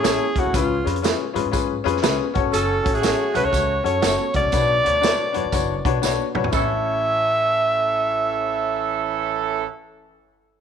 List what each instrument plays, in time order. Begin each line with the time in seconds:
Already playing: alto saxophone G#4
0.03 upright bass A1, grand piano C#4 E4 A4 C#5, snare, closed hi-hat, tambourine, high conga
0.20 high conga
0.36 upright bass D#2, grand piano C#4 E4 A4 C#5, alto saxophone F#4, kick, closed hi-hat
0.45 upright bass D2
0.53 upright bass C#2, grand piano C#3 C#4 F4 G#4 B4, alto saxophone F4, kick, closed hi-hat, tambourine, muted conga
0.84 upright bass F2, grand piano C#4 F4 G#4 B4, closed hi-hat
0.96 closed hi-hat
1.02 grand piano C#4 F4 G#4 B4, snare, closed hi-hat, tambourine, high conga
1.34 upright bass G#2, grand piano C#4 F4 G#4 B4, closed hi-hat, low conga
1.45 upright bass G#2
1.51 grand piano C#4 F4 G#4 B4, kick, closed hi-hat, tambourine, muted conga, low conga
1.84 upright bass F2, grand piano C#4 F4 G#4 B4, closed hi-hat, low conga
1.97 snare
2.02 upright bass C#2, grand piano C#4 F4 G#4 B4, snare, closed hi-hat, tambourine, high conga
2.19 high conga
2.34 upright bass F#1, grand piano C#4 F#4 A4 C#5, kick, closed hi-hat
2.51 upright bass F#1, horn section C#4 F#4 A4, alto saxophone A4, closed hi-hat, tambourine, muted conga
2.83 upright bass A1, grand piano C#4 F#4 A4 C#5, kick, closed hi-hat, muted conga
2.93 horn section A3 C#4 F#4, alto saxophone G#4, closed hi-hat
3.01 grand piano C#4 F#4 A4 C#5, snare, closed hi-hat, tambourine, high conga
3.33 upright bass C#2, horn section A3 C#4 F#4, grand piano C#4 F#4 A4 C#5, alto saxophone B4, closed hi-hat, low conga
3.44 upright bass C#2, alto saxophone C#5
3.51 upright bass C#2, grand piano C#4 F#4 A4 C#5, kick, closed hi-hat, tambourine, muted conga
3.84 upright bass F#2, grand piano C#4 F#4 A4 C#5, alto saxophone C#5, closed hi-hat, low conga
4.01 upright bass F#1, grand piano C#4 F#4 A4 C#5, snare, closed hi-hat, tambourine, high conga
4.20 high conga
4.34 upright bass C#2, grand piano C#4 F#4 A4 C#5, alto saxophone D5, kick, closed hi-hat
4.44 upright bass C2
4.52 upright bass B1, grand piano B2 D4 F#4 B4 C#5, kick, closed hi-hat, tambourine, muted conga
4.84 upright bass D2, grand piano D4 F#4 B4 C#5, closed hi-hat, muted conga
5.01 grand piano D4 F#4 B4 C#5, snare, closed hi-hat, tambourine, high conga
5.32 upright bass F#2, grand piano D4 F#4 B4 C#5, closed hi-hat, low conga
5.44 upright bass F#2
5.52 upright bass F#1, grand piano D4 F#4 B4 C#5, kick, closed hi-hat, tambourine, muted conga, low conga
5.85 upright bass B2, grand piano D4 F#4 B4 C#5, kick, closed hi-hat, low conga
6.02 upright bass B1, grand piano D4 F#4 B4 C#5, snare, tambourine, high conga
6.18 high conga
6.35 upright bass B1, grand piano D4 F#4 B4 C#5, mid tom
6.44 upright bass A#1, floor tom
6.48 grand piano A1 C#4 E4, horn section E3 C#4 A4
6.52 upright bass A1, grand piano A4 C#5, alto saxophone E5, kick, tambourine, muted conga